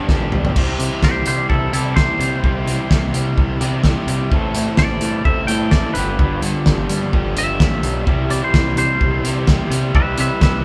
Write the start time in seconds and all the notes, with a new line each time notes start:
Already playing: B4 D5 G5 D6
0.08 A1 G2 D3 G3 B3 D4 G4, kick, snare
0.12 G4
0.20 high tom
0.32 B1, mid tom
0.45 floor tom
0.55 C2 C3 G3 C4 E4 G4 E5, kick, crash
0.79 C3 E3, closed hi-hat
1.02 C2 E3 G4 C5, kick, snare
1.25 C3 G3 G4 C5, closed hi-hat
1.49 C2 B3 E4 A4, kick
1.73 C3 E3 G3 C4 E4 G4 A4, closed hi-hat
1.96 C2 C3 G3 B3 E4 G4 C5, kick, snare
2.19 C3 G3, closed hi-hat
2.43 C2 C3 G3 E4 G4, kick
2.65 C3 E3, closed hi-hat
2.89 C2 E3, kick, snare
3.12 C3 G3, closed hi-hat
3.36 C2 B3, kick
3.60 C3 E3 G3 C4 E4 G4, closed hi-hat
3.84 C2 C3 G3 B3 E4 G4, kick, snare
4.07 C3 G3, closed hi-hat
4.31 A1 A2 E3 A3 C4 E4 A4 C5, kick
4.55 A2 E3, closed hi-hat
4.77 A1 E3 D5, kick, snare
5.01 A2 G3, closed hi-hat
5.24 A1 C4 E5, kick
5.47 A2 E3 C4 E4 A4 G5, closed hi-hat
5.52 A2
5.71 A1 A2 E3 C4 E4 A4 D5, kick, snare
5.94 G1 G2 D3 F3 G3 D4 F4 G4 B4 D5, closed hi-hat
5.98 G3 B3 G4
6.19 G1 G2, kick
6.41 G2 D3, closed hi-hat
6.66 G1 F3, kick, snare
6.89 G2 G3, closed hi-hat
7.12 G1 G2 D3 F3 G3 B3 G4, kick
7.36 G1 G2 D3 F3 G3 B3 G4 E5, closed hi-hat
7.60 A1 B3, kick, snare
7.83 B1 G3, closed hi-hat
8.06 C2 C3 E3 G3 E4 G4 E5, kick
8.30 C3 E3 D5, closed hi-hat
8.44 C5
8.54 C2 E3, kick, snare
8.77 C3 G3 C5, closed hi-hat
9.01 C2 B3, kick
9.23 C3 E3 G3 E4 G4, closed hi-hat
9.47 C2 C3 E3 G3 B3 E4 G4, kick, snare
9.70 C3 G3, closed hi-hat
9.94 C2 C3 E3 G3 E4 G4 B4 E5, kick
10.18 C3 E3 B4 E5, closed hi-hat
10.41 C2 E3 B4 E5, kick, snare